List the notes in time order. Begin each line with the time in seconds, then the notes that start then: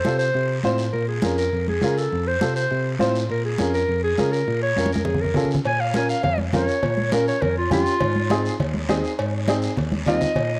Already playing: C5
0.05 C3 C4 F4 A4, high conga, short guiro
0.18 C5, short guiro
0.34 C3, high conga, long guiro
0.63 A2 C4 F4 C5, high conga, short guiro
0.78 short guiro
0.92 A#2 A#4, high conga, long guiro
1.08 G#4
1.22 F2 C#4 F4 A#4, high conga, short guiro
1.38 A#4, short guiro
1.53 F2, high conga, long guiro
1.68 G#4, high conga
1.82 C#3 C#4 F4 A#4, high conga, short guiro
1.98 A4, short guiro
2.12 F2, high conga, long guiro
2.27 C5
2.41 C3 C4 F4 A4, high conga, short guiro
2.56 C5, short guiro
2.71 C3, high conga, long guiro
2.99 A2 C4 F4 C5, high conga, short guiro
3.15 short guiro
3.29 A#2 A#4, high conga, long guiro
3.45 G#4
3.58 F2 C#4 F4 A#4, high conga, short guiro
3.74 A#4, short guiro
3.88 F2, high conga, long guiro
4.04 G#4
4.18 C#3 C#4 F4 A#4, high conga, short guiro
4.33 A#4, short guiro
4.48 A#2, high conga, long guiro
4.63 C#5
4.76 F2 C#4 F4 A#4, high conga, short guiro
4.86 high conga
4.93 A#4, high conga, short guiro
5.05 F2 G#4, low conga, long guiro
5.14 low conga
5.21 A#4, low conga
5.34 C#3 C#4 F4 A4, low conga, short guiro
5.45 low conga
5.51 low conga, short guiro
5.65 A#2 G#5, cowbell, high conga, long guiro
5.80 F5
5.94 C#4 F4 A#4 G#5, cowbell, high conga, short guiro
6.09 F5, short guiro
6.23 F2 F5, cowbell, high conga, low conga, long guiro
6.38 high conga
6.53 F2 C#4 F4 A#4 C#5, cowbell, high conga, low conga, short guiro
6.68 short guiro
6.83 A#2, cowbell, high conga, low conga, long guiro
6.97 high conga
7.12 C#4 F4 A#4, cowbell, high conga, short guiro
7.28 C#5, short guiro
7.42 F2 A#4, cowbell, high conga, low conga, long guiro
7.58 F4
7.70 F2 C#4 F4 G4, cowbell, high conga, low conga, short guiro
7.86 short guiro
8.00 G#2, cowbell, high conga, low conga, long guiro
8.15 high conga
8.30 C4 D#4 G#4, cowbell, high conga, short guiro
8.45 short guiro
8.60 D#2, cowbell, high conga, low conga, long guiro
8.74 high conga
8.89 D#2 C4 D#4 G#4, cowbell, high conga, short guiro
9.04 short guiro
9.19 G#2, cowbell, high conga, long guiro
9.48 C4 D#4 G#4, cowbell, high conga, short guiro
9.62 short guiro
9.77 D#2, cowbell, high conga, low conga, long guiro
9.92 high conga
10.06 D#2 C4 D#4 F4 D#5, cowbell, low conga, low timbale, short guiro
10.21 low conga, short guiro
10.36 A#2, cowbell, high conga, low conga, long guiro